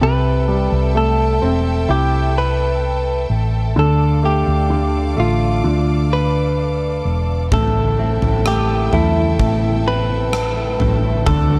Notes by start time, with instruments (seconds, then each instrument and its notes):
Already playing: string section A4
0.01 fingered electric bass C2, grand piano C3, clean electric guitar B4, string section E5 G5 A5
0.48 grand piano G3
0.72 fingered electric bass C2
0.95 grand piano A3, clean electric guitar A4
1.42 fingered electric bass E1, grand piano C4
1.89 fingered electric bass C2, grand piano E4, clean electric guitar G4
2.38 clean electric guitar B4
3.30 fingered electric bass A1
3.76 fingered electric bass D2, grand piano D3, clean electric guitar A4, string section D5 F5 D6
4.23 grand piano A3, clean electric guitar G4
4.48 fingered electric bass D2
4.70 grand piano D3
5.17 fingered electric bass A1, grand piano A3, clean electric guitar F4
5.64 fingered electric bass D2, grand piano D3
6.13 clean electric guitar B4
7.05 fingered electric bass E1
7.52 fingered electric bass A1, clean electric guitar A2 A4, grand piano A3, string section A4 E5 G5 A5, kick, floor tom
7.76 clean electric guitar E4
7.99 grand piano A3, clean electric guitar C4
8.22 fingered electric bass A1, clean electric guitar E4, floor tom
8.46 grand piano A3, clean electric guitar G4 A4, cross-stick
8.70 clean electric guitar E4
8.93 fingered electric bass E2, grand piano A3, clean electric guitar E4 A4, floor tom
9.16 clean electric guitar E4
9.39 fingered electric bass A1, clean electric guitar A2 A4, grand piano A3, kick
9.63 clean electric guitar E4
9.86 clean electric guitar C4 B4
10.09 clean electric guitar E4
10.33 clean electric guitar A4, cross-stick
10.57 clean electric guitar E4
10.80 fingered electric bass A1, clean electric guitar A4, floor tom
11.04 clean electric guitar E4
11.26 fingered electric bass D2, grand piano D3, clean electric guitar D3 A4, string section D5 F#5 D6, kick, floor tom
11.50 clean electric guitar F#4